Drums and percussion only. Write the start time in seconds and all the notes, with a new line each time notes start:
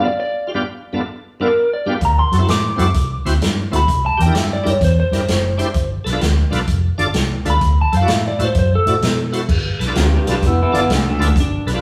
2.01 kick, closed hi-hat
2.33 closed hi-hat
2.48 snare, closed hi-hat
2.79 closed hi-hat
2.94 kick, closed hi-hat
3.26 snare, closed hi-hat
3.42 snare, closed hi-hat
3.73 closed hi-hat
3.88 kick, closed hi-hat
4.20 closed hi-hat
4.35 snare, closed hi-hat
4.66 closed hi-hat
4.81 kick, closed hi-hat
5.13 snare, closed hi-hat
5.28 snare, closed hi-hat
5.59 closed hi-hat
5.74 kick, closed hi-hat
6.06 snare, closed hi-hat
6.21 snare, closed hi-hat
6.53 snare, closed hi-hat
6.68 kick, closed hi-hat
6.99 closed hi-hat
7.14 snare, closed hi-hat
7.45 closed hi-hat
7.61 kick, closed hi-hat
7.93 closed hi-hat
8.08 snare, closed hi-hat
8.39 closed hi-hat
8.55 kick, closed hi-hat
8.87 closed hi-hat
9.02 snare, closed hi-hat
9.33 closed hi-hat
9.49 kick, crash
9.81 snare, closed hi-hat
9.95 snare, closed hi-hat
10.27 snare, closed hi-hat
10.42 kick, closed hi-hat
10.75 closed hi-hat
10.90 snare, closed hi-hat
11.21 closed hi-hat
11.36 kick, closed hi-hat
11.68 snare, closed hi-hat